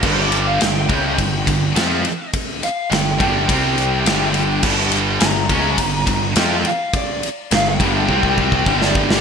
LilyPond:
<<
  \new Staff \with { instrumentName = "Lead electric guitar" } { \time 4/4 \key c \dorian \tempo 4 = 104 c''16 d''8 f''16 g''2. | r8 f''8 g''8 g''8 g''2 | r4 bes''2 g''8 f''8 | d''8 r8 f''16 g''2 d''16 d''8 | }
  \new Staff \with { instrumentName = "Distorted electric guitar" } { \clef bass \time 4/4 \key c \dorian <g, d g>4 <g, d>8 <cis aes cis'>8 <g, d>8 <g, d>8 <f c' f'>8 r8 | r4 <g, d>8 <g, d g>8 <c g c'>4 <g, d g>4 | <g, d g>4 <g, d>8 <cis aes cis'>8 <g, d>8 <g, d>8 <f c' f'>8 r8 | r4 <g, d>8 <g, d g>8 <c g c'>4 <g, d g>4 | }
  \new Staff \with { instrumentName = "Distorted electric guitar" } { \clef bass \time 4/4 \key c \dorian <g, d g>4 <g, d>8 <cis aes cis'>8 <g, d>8 <g, d>8 <f c' f'>8 r8 | r4 <g, d>8 <g, d g>8 <c g c'>4 <g, d g>4 | <g, d g>4 <g, d>8 <cis aes cis'>8 <g, d>8 <g, d>8 <f c' f'>8 r8 | r4 <g, d>8 <g, d g>8 <c g c'>4 <g, d g>4 | }
  \new Staff \with { instrumentName = "Overdriven electric guitar" } { \clef bass \time 4/4 \key c \dorian <g, d g>4 <g, d>8 <cis aes cis'>8 <g, d>8 <g, d>8 <f c' f'>8 r8 | r4 <g, d>8 <g, d g>8 <c g c'>4 <g, d g>4 | <g, d g>4 <g, d>8 <cis aes cis'>8 <g, d>8 <g, d>8 <f c' f'>8 r8 | r4 <g, d>8 <g, d g>8 <c g c'>4 <g, d g>4 | }
  \new Staff \with { instrumentName = "Picked electric bass" } { \clef bass \time 4/4 \key c \dorian g,,4 g,,8 cis,8 g,,8 g,,8 f,8 r8 | r4 g,,8 g,,8 c,4 g,,4 | g,,4 g,,8 cis,8 g,,8 g,,8 f,8 r8 | r4 g,,8 g,,8 c,4 g,,4 | }
  \new DrumStaff \with { instrumentName = "Drums" } \drummode { \time 4/4 <cymc bd>8 cymr8 <cymr sn>8 <bd cymr>8 <bd cymr>8 <bd cymr>8 <cymr sn>8 cymr8 | <bd cymr>8 cymr8 <cymr sn>8 <bd cymr>8 <bd cymr>8 cymr8 <cymr sn>8 cymr8 | <cymc bd>8 cymr8 <cymr sn>8 <bd cymr>8 <bd cymr>8 <bd cymr>8 <cymr sn>8 cymr8 | <bd cymr>8 cymr8 <cymr sn>8 <bd cymr>8 bd16 bd16 bd16 bd16 bd16 sn16 bd16 sn16 | }
>>